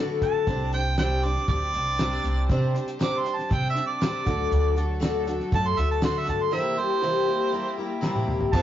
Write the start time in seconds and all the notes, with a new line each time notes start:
Already playing: D3 F#3 A3 D4 F#4 B4
0.00 D4 A4
0.22 D3 A5, kick, closed hi-hat
0.47 C2 C3 G3 C4 D4 G4 C5 D5, kick, closed hi-hat
0.73 C4 D4 C5 G5, closed hi-hat
0.97 C3 G3 C4 D4 G4 C5 D5 G5, snare, closed hi-hat, tambourine
1.23 C4 D4 C5 D5, closed hi-hat
1.36 snare
1.48 D2 G3 C4 D4 C5 D5, kick, closed hi-hat
1.73 C2 C4 D4 C5, closed hi-hat
1.99 C3 G3 C4 D4 C5, snare, closed hi-hat, tambourine
2.24 C2, closed hi-hat
2.48 C3 G3 C4 D4 G4 C5 D5, kick, closed hi-hat
2.75 C4 D4 C5, closed hi-hat
2.88 closed hi-hat
2.99 C3 G3 C4 D4 G4 C5 D5 D6, snare, closed hi-hat, tambourine
3.19 C5 C6
3.25 C4 D4, closed hi-hat
3.36 A5, snare
3.49 C3 G3 C4 D4 C5, kick, closed hi-hat
3.54 G5
3.70 C5 E5
3.75 C4 D4, closed hi-hat
3.87 D5
4.01 C3 G3 C4 D4 C5, snare, closed hi-hat, tambourine
4.25 D2 D3 F#3 A3 D4 F#4 A4 D5, kick, closed hi-hat
4.51 D2, closed hi-hat
4.75 D4 F#4 A4, closed hi-hat
5.00 D3 A3 D4 F#4 A4 D5, snare, closed hi-hat, tambourine
5.25 D4 F#4 A4, closed hi-hat
5.40 snare
5.51 F#2 A3 D4 F#4 A4, kick, closed hi-hat
5.55 A5
5.68 C6
5.76 D2 D4 F#4 A4 E5, closed hi-hat
5.91 A5
6.01 D3 A3 D4 F#4 A4 C6, snare, closed hi-hat, tambourine
6.19 E5
6.27 G2 A5, closed hi-hat
6.43 C6
6.51 C3 E3 G3 A#3 C4 E4 G4 A#4 C5 E5
6.77 G3 A#3 E4 G4 C5
7.02 C3 E3 G3 A#3 E4 G4 A#4 C5
7.27 G3 A#3 E4 G4
7.52 G3 A#3 E4 G4
7.78 G3 A#3 E4 G4
8.01 C3 E3 G3 A#3 E4 G4, snare
8.15 high tom
8.28 mid tom
8.41 floor tom
8.53 F2 F3 A3 C4 F4 A4 C5 A5, kick, crash